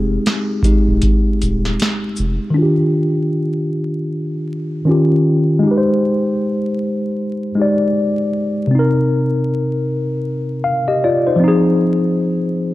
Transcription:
Already playing: F1 G#3 C4 D#4 G4 G#4
0.26 snare, closed hi-hat
0.63 G#3 D#4 G4, kick, closed hi-hat, shaker
0.87 D1
1.02 kick, closed hi-hat
1.42 D#1, closed hi-hat, shaker
1.65 snare
1.80 snare, closed hi-hat
2.16 F1, shaker
2.50 D#3 D4
2.58 F4
2.62 G4
4.85 D#3 C#4 F4
4.91 G4
5.59 G#3 D#4
5.67 G4
5.71 B4
5.78 C5
7.55 G#3 D#4
7.59 G4 D5
8.67 C3 C4
8.75 D#4
8.79 A#4
10.64 F5
10.88 G4 D#5
11.04 F4 D5
11.27 D#4 C5
11.36 F3 C4
11.44 D#4
11.48 G#4

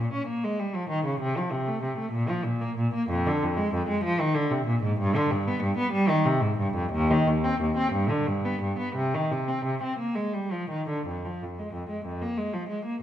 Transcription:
0.00 A#2
0.13 C#4
0.27 A#3
0.44 G#3
0.59 G3
0.75 F3
0.89 D#3
1.05 C#3
1.20 C3
1.37 F3
1.52 C3
1.68 A3
1.83 C3
1.98 A3
2.12 A#2
2.29 F3
2.45 A#2
2.61 A#3
2.78 A#2
2.94 A#3
3.09 F2
3.26 D3
3.43 F2
3.57 G#3
3.74 F2
3.89 G#3
4.04 F3
4.20 D#3
4.35 D3
4.51 C3
4.66 A#2
4.83 G#2
4.99 G2
5.16 D3
5.31 G2
5.48 B3
5.63 G2
5.78 B3
5.92 G3
6.09 D#3
6.25 C3
6.41 G#2
6.58 G2
6.75 F2
6.92 D#2
7.11 D#3
7.27 D#2
7.44 C4
7.61 D#2
7.77 C4
7.92 G2
8.09 D3
8.27 G2
8.45 B3
8.62 G2
8.78 B3
8.95 C3
9.14 D#3
9.31 C3
9.48 C4
9.65 C3
9.83 C4
9.98 A#3
10.15 G#3
10.33 G3
10.52 F3
10.70 D#3
10.89 D3
11.07 F2
11.25 F3
11.42 F2
11.59 G#3
11.74 F2
11.90 G#3
12.06 F2
12.21 A#3
12.38 G#3
12.53 F3
12.69 G#3
12.85 A#3

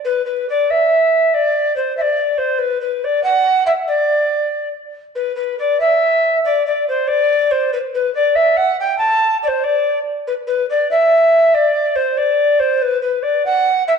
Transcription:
0.04 B4
0.25 B4
0.49 D5
0.70 E5
1.34 D5
1.76 C5
1.97 E5
2.01 D5
2.37 C5
2.58 B4
2.81 B4
3.04 D5
3.23 F#5
3.66 E5
3.87 D5
5.15 B4
5.35 B4
5.59 D5
5.80 E5
6.44 D5
6.66 D5
6.88 C5
7.07 D5
7.51 C5
7.73 B4
7.94 B4
8.14 D5
8.35 E5
8.57 F#5
8.80 G5
8.98 A5
9.43 D5
9.47 C5
9.63 D5
10.27 B4
10.47 B4
10.69 D5
10.90 E5
11.54 D5
11.95 C5
12.17 D5
12.59 C5
12.82 B4
13.01 B4
13.22 D5
13.45 F#5
13.87 E5

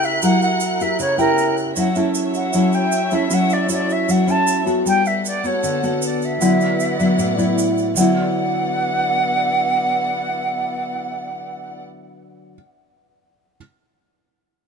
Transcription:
Already playing: C#3 E4 F#4 G4 A#4 F#6
0.03 E5, shaker
0.22 F#3 E4 G4 A#4 F#5, shaker
0.42 F#5, shaker
0.60 shaker
0.80 E4 G4 A#4 E5, shaker
0.99 C#3 C#5, shaker
1.18 E4 G4 A#4 G5, shaker
1.38 shaker
1.57 shaker
1.76 F#3 C#4 E4 A4 C#5 E5 F#5, shaker
1.95 C#4 E4 A4, shaker
2.15 shaker
2.34 F#5, shaker
2.53 F#3 C#4 E4 A4, shaker
2.73 G5, shaker
2.92 shaker
3.11 C#4 E4 A4 E5, shaker
3.30 F#3 C#4 E4 A4 F#5, shaker
3.50 D5, shaker
3.69 C#4 E4 A4, shaker
3.73 D5
3.90 E5, shaker
4.09 F#3 F#5, shaker
4.27 C#4 E4 A4 A5, shaker
4.47 shaker
4.66 B3 F#4 A4, shaker
4.84 G3 B3 A4 F#5 G5, shaker
5.05 E5, shaker
5.25 D5, shaker
5.44 B3 F#4 A4 C#5, shaker
5.63 D3, shaker
5.83 B3 F#4 A4, shaker
6.02 D5, shaker
6.22 E5, shaker
6.40 D3 F#3 B3 E4 D5 F#5, shaker
6.61 shaker
6.80 shaker
6.99 F#3 B3 E4, shaker
7.18 A2, shaker
7.37 F#3 B3 E4, shaker
7.58 shaker
7.78 shaker
7.95 D3 F#3 B3 E4 D5 F#5, shaker
8.00 E4

